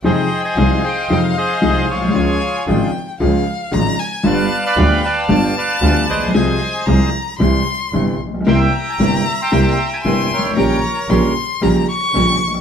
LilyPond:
<<
  \new Staff \with { instrumentName = "Violin" } { \time 4/4 \key f \minor \tempo 4 = 114 g''4 f''2. | aes''4 g''4 f''4 bes''8 aes''8 | a''4 g''4 a''2 | aes''4 bes''4 c'''4. r8 |
bes''2. c'''4 | bes''4 c'''4 bes''8 des'''4. | }
  \new Staff \with { instrumentName = "Bandoneon" } { \time 4/4 \key f \minor << { ees''8. aes''8. g''8. f''16 ees''4 des''8~ | des''4 r2. | f''8. b''8. a''8. g''16 f''4 ees''8~ | ees''4 r2. |
c'''8 bes''16 aes''16 g''8 bes''16 c'''4 aes''8. g''8~ | g''8 r2. r8 | } \\ { <aes' c''>8. <c'' ees''>8. <c'' ees''>4 <aes' c''>4 <f' aes'>8~ | <f' aes'>4. r2 r8 | <b' d''>8. <d'' f''>8. <d'' f''>4 <b' d''>4 <aes' c''>8~ | <aes' c''>4. r2 r8 |
<e'' g''>4.~ <e'' g''>16 <e'' g''>4 e''8. <bes' des''>8~ | <bes' des''>4. r2 r8 | } >> }
  \new Staff \with { instrumentName = "String section" } { \time 4/4 \key f \minor r1 | r1 | r1 | r1 |
<c' e' bes'>8 r8 <c' e' bes'>8 r8 <c' e' bes'>8 r8 <c' e' bes'>8 r8 | <des' g' bes'>8 r8 <des' g' bes'>8 r8 <des' g' bes'>8 r8 <des' g' bes'>8 r8 | }
  \new Staff \with { instrumentName = "Upright piano" } { \clef bass \time 4/4 \key f \minor <f, c f aes ees'>8 r8 <c, c f aes ees'>8 r8 <f, c f aes ees'>8 r8 <c, c f aes ees'>8 r32 bes,,32 b,,32 c,32 | <des, des f aes f'>8 r8 <aes,, aes, des f aes f'>8 r8 <des, des f aes f'>8 r8 <aes,, aes, des f aes f'>8 r8 | <g,, g, d g b f'>8 r8 <d, d g b f'>8 r8 <g,, g, d g b f'>8 r8 <d, d g b f'>8 r32 a,,32 bes,,32 b,,32 | <c, c f aes f'>8 r8 <c, c f aes f'>8 r8 <c, c e g e'>8 r8 <g,, g, c e g e'>8 r32 a,,32 bes,,32 b,,32 |
<c, c g bes e'>8 r8 <g,, g, c g bes e'>8 r8 <c, c g bes e'>8 r8 <g,, g, c g bes e'>8 r32 g,,32 aes,,32 a,,32 | <bes,, bes, des g bes g'>8 r8 <bes,, bes, des g bes g'>8 r8 <bes,, bes, des g bes g'>8 r8 <bes,, bes, des g bes g'>8 r32 a,,32 bes,,32 r32 | }
  \new Staff \with { instrumentName = "Double bass" } { \clef bass \time 4/4 \key f \minor f,8 r8 c,8 r8 f,8 r8 c,8 b,,8 | des,8 r8 aes,,8 r8 des,8 r8 aes,,8 r8 | g,,8 r8 d,8 r8 g,,8 r8 d,8 bes,,8 | c,8 r8 c,8 r8 c,8 r8 g,,8 bes,,8 |
c,8 r8 g,,8 r8 c,8 r8 g,,8 aes,,8 | bes,,8 r8 bes,,8 r8 bes,,8 r8 bes,,8 bes,,8 | }
>>